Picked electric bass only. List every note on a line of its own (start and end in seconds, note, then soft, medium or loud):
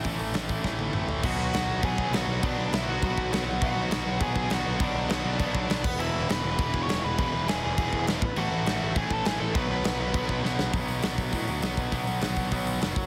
0.05 0.18 A1 loud
0.20 0.32 A1 medium
0.34 0.47 A1 medium
0.49 0.62 A1 medium
0.64 0.90 A1 medium
0.95 1.07 A1 medium
1.09 1.22 A1 medium
1.24 1.36 B1 loud
1.39 1.51 B1 medium
1.53 1.65 B1 medium
1.68 1.81 B1 medium
1.83 1.95 B1 medium
1.99 2.11 B1 medium
2.12 2.25 B1 loud
2.27 2.40 B1 medium
2.43 2.55 B1 loud
2.58 2.70 B1 loud
2.72 2.85 B1 medium
2.87 2.99 B1 medium
3.03 3.15 B1 loud
3.17 3.29 B1 medium
3.32 3.44 B1 loud
3.46 3.59 B1 medium
3.62 3.74 B1 loud
3.76 3.88 B1 loud
3.91 4.03 B1 medium
4.05 4.18 B1 medium
4.21 4.33 B1 loud
4.35 4.48 B1 medium
4.50 4.63 B1 loud
4.66 4.78 B1 medium
4.80 4.92 B1 loud
4.95 5.07 B1 medium
5.09 5.22 B1 medium
5.24 5.37 B1 medium
5.40 5.52 B1 loud
5.54 5.67 B1 medium
5.69 5.81 B1 medium
5.85 5.97 E1 medium
5.98 6.11 E1 medium
6.14 6.26 E1 medium
6.29 6.41 E1 medium
6.43 6.56 E1 medium
6.59 6.71 E1 medium
6.74 6.86 E1 medium
6.88 7.00 E1 loud
7.04 7.16 E1 medium
7.19 7.31 E1 loud
7.34 7.46 E1 loud
7.48 7.60 E1 medium
7.65 7.76 E1 loud
7.78 7.90 E1 loud
7.93 8.05 E1 medium
8.08 8.19 E1 loud
8.22 8.34 A1 medium
8.37 8.49 A1 loud
8.52 8.64 A1 loud
8.67 8.79 A1 medium
8.82 8.94 A1 medium
8.96 9.08 A1 loud
9.10 9.23 A1 medium
9.27 9.38 A1 loud
9.40 9.52 A1 loud
9.55 9.67 B1 loud
9.70 9.82 B1 loud
9.84 9.97 B1 medium
10.00 10.12 B1 medium
10.15 10.27 B1 medium
10.29 10.41 B1 medium
10.44 10.56 B1 loud
10.59 10.73 B1 medium
10.73 10.86 B1 medium
10.89 11.01 B1 medium
11.03 11.16 B1 medium
11.18 11.31 B1 medium
11.33 11.46 A2 medium
11.48 11.61 D2 medium
11.63 11.75 B1 medium
11.77 11.90 B1 medium
11.93 12.05 B1 medium
12.08 12.20 B1 medium
12.22 12.35 B1 medium
12.36 12.49 B1 medium
12.52 12.77 B1 loud
12.81 12.94 F1 medium
12.96 13.06 F#1 medium